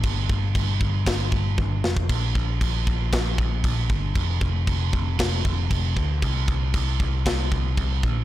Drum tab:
CC |x---x---x-------|x---x---x---x---|x---x---x---x---|x---x---x---x---|
SD |--------o-----o-|--------o-------|--------o-------|--------o-------|
T1 |------------o---|----------------|----------------|----------------|
BD |o-o-o-o-o-o-o--o|o-o-o-o-o-o-o-o-|o-o-o-o-o-o-o-o-|o-o-o-o-o-o-o-o-|